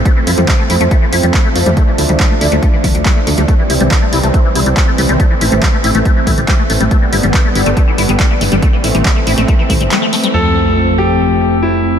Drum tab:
HH |x-oxx-oxx-oxx-ox|x-oxx-oxx-oxx-ox|x-oxx-oxx-oxx-ox|x-oxx-oxx-oxx-ox|
CP |----x-------x---|----x-------x---|----x-------x---|----x-------x---|
T2 |---o-----------o|---o------o-----|---o-----------o|---o------o-----|
BD |o---o---o---o---|o---o---o-o-o---|o---o---o---o---|o---o---o-o-o---|

HH |x-oxx-oxx-oxx-ox|x-oxx-oxx-oxx-ox|----------------|
CP |----x-------x---|----x-------x---|----------------|
T2 |---o-----------o|---o------o-----|----------------|
BD |o---o---o---o---|o---o---o-o-----|----------------|